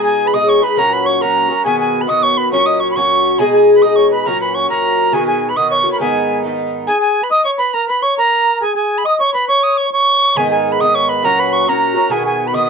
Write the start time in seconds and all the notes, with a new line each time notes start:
Already playing: B2 G#3 D#4 G#4
0.03 G#4 G#5
0.25 B4 B5
0.33 B2 G#3 D#4 G#4 D#5 D#6
0.47 C#5 C#6
0.61 G#3 D#4 G#4 B4 B5
0.76 A#2 F#3 C#4 F#4 A#4 A#5
0.91 B4 B5
1.05 C#5 C#6
1.20 A#2 F#3 C#4 F#4 A#4 A#5
1.48 F#3 C#4 F#4 A#4
1.64 B2 D#3 B3 F#4 G#4 G#5
1.80 G#5
2.00 B4 B5
2.07 B2 D#3 B3 F#4 D#5 D#6
2.23 C#5 C#6
2.37 B4 B5
2.52 A#2 F#3 C#4 F#4 C#5 C#6
2.66 D#5 D#6
2.80 C#5 C#6
2.91 B5
2.95 A#2 F#3 C#4 F#4 C#5 C#6
3.38 B2 G#3 D#4 G#4 G#5
3.52 G#4 G#5
3.75 B4 B5
3.82 B2 G#3 D#4 G#4 D#5 D#6
3.96 C#5 C#6
4.11 B4 B5
4.25 A#2 F#3 C#4 F#4 A#4 A#5
4.41 B4 B5
4.55 C#5 C#6
4.69 A#2 F#3 C#4 F#4 A#4 A#5
5.12 B2 D#3 B3 F#4 G#4 G#5
5.27 G#4 G#5
5.49 B4 B5
5.55 B2 D#3 B3 F#4 D#5 D#6
5.71 C#5 C#6
5.81 F#4 C#5
5.85 D#3 B3 C#5
5.92 A#4 B5
6.00 G#2 D#3 B3 D#4 G#4 G#5
6.44 G#2 D#3 B3 D#4
6.87 G#4 G#5
7.01 G#5
7.23 B4 B5
7.31 D#5 D#6
7.44 C#5 C#6
7.58 B4 B5
7.74 A#4 A#5
7.88 B4 B5
8.02 C#5 C#6
8.18 A#4 A#5
8.62 G#4 G#5
8.75 G#4 G#5
8.98 B5
9.05 D#5 D#6
9.19 C#5 C#6
9.34 B4 B5
9.48 C#5 C#6
9.63 D#6
9.77 C#6
9.93 C#5 C#6
10.35 G#2 D#3 B3 D#4 G#4 G#5
10.50 G#4 G#5
10.72 B4 B5
10.79 G#2 D#3 B3 D#4 D#5 D#6
10.94 C#5 C#6
11.09 B4 B5
11.23 A#2 F#3 C#4 F#4 A#4 A#5
11.39 B4 B5
11.53 C#6
11.66 A#2 F#3 C#4 F#4 A#4 A#5
11.94 F#3 C#4 F#4
12.10 B2 D#3 B3 F#4 G#4 G#5
12.25 G#4 G#5
12.46 B4 B5
12.53 B2 D#3 B3 F#4 D#5 D#6